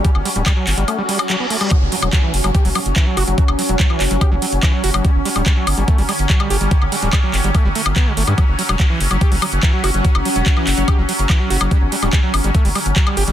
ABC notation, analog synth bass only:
X:1
M:4/4
L:1/16
Q:1/4=144
K:Glyd
V:1 name="Analog synth bass" clef=bass
z G,,, z D,,, z2 G,,, G,,, z8 | z F,,, z E,,, z2 F,,, F,,, z F,,, z F,,, z2 F,,, F,,, | z F,,, z E,,, z2 F,,, F,,, z F,,, z F,,, z2 F,,, F,,, | z G,,, z D,,, z2 G,,, G,,, z G,,, z G,,, z2 G,,, G,,, |
z G,,, z D,,, z2 G,,, G,,, z G,,, z G,,, z2 G,,, G,, | z F,,, z E,,, z2 F,,, F,,, z F,,, z F,,, z2 F,,, F,,, | z F,,, z E,,, z2 F,,, F,,, z F,,, z F,,, z2 F,,, F,,, | z G,,, z D,,, z2 G,,, G,,, z G,,, z G,,, z2 G,,, G,,, |]